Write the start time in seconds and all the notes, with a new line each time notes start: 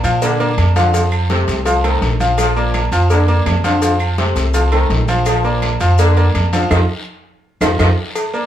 0.03 A#2 F3 F4 F5, high conga, low agogo, short guiro, maracas
0.22 D3 A#3 A#4 D5, cowbell, high conga, long guiro, maracas
0.40 A#3 A#4 D5, high conga, low agogo, maracas
0.57 F2, cowbell, high conga, low agogo, short guiro, claves, maracas
0.76 D3 F3 F4 F5, cowbell, high conga, short guiro, maracas
0.94 F3 F4 F5, cowbell, high conga, low agogo, long guiro, maracas
1.12 high conga, low agogo, claves, maracas
1.30 C3 A3 A4 C5, cowbell, high conga, short guiro, maracas
1.48 C2, cowbell, high conga, low agogo, short guiro, maracas
1.66 F3 F4 F5, cowbell, high conga, low agogo, long guiro, maracas
1.84 D#3 A3 A4 C5, high conga, low agogo, claves, maracas
2.01 A#1, cowbell, high conga, short guiro, maracas
2.20 F3 F4 F5, high conga, short guiro, maracas
2.38 F3, cowbell, high conga, low agogo, long guiro, claves, maracas
2.56 A#3 A#4 D5, high conga, maracas
2.74 cowbell, high conga, low agogo, short guiro, claves, maracas
2.92 F2 F3 F4 F5, low agogo, short guiro, maracas
3.10 D3 A#3 A#4 D5, cowbell, high conga, long guiro, maracas
3.28 A#3 A#4 D5, high conga, low agogo, maracas
3.46 F2, cowbell, high conga, low timbale, low agogo, short guiro, claves, maracas
3.64 D3 F3 F4 F5, cowbell, high conga, short guiro, maracas
3.82 F3 F4 F5, cowbell, high conga, low agogo, long guiro, maracas
4.00 high conga, low agogo, claves, maracas
4.18 C3 A3 A4 C5, cowbell, high conga, short guiro, maracas
4.35 C2, cowbell, high conga, low agogo, short guiro, maracas
4.54 F3 F4 F5, cowbell, high conga, low agogo, long guiro, maracas
4.72 D#3 A3 A4 C5, high conga, low agogo, claves, maracas
4.90 A#1, cowbell, high conga, short guiro, maracas
5.08 F3 F4 F5, high conga, short guiro, maracas
5.26 F3, cowbell, high conga, low agogo, long guiro, claves, maracas
5.44 A#3 A#4 D5, maracas
5.62 cowbell, high conga, low agogo, short guiro, claves, maracas
5.80 F2 F3 F4 F5, high conga, low agogo, short guiro, maracas
5.98 D3 A#3 A#4 D5, cowbell, long guiro, maracas
6.17 A#3 A#4 D5, high conga, low agogo, maracas
6.34 F2, cowbell, high conga, low agogo, short guiro, claves, maracas
6.53 D3 F3 F4 F5, cowbell, high conga, short guiro, maracas
6.70 F2 C3 D#3 F3 D#4 F4 A4, cowbell, high conga, high timbale, long guiro, claves, maracas
7.61 F2 C3 D#3 F3 D#4 F4 A4, cowbell, high conga, high timbale, long guiro, claves, maracas
7.79 F2 C3 D#3 F3 D#4 F4 A4, cowbell, high conga, high timbale, long guiro, claves, maracas
8.15 cowbell, high conga, low agogo, claves, maracas
8.33 A#3 A#4 D5, high conga, maracas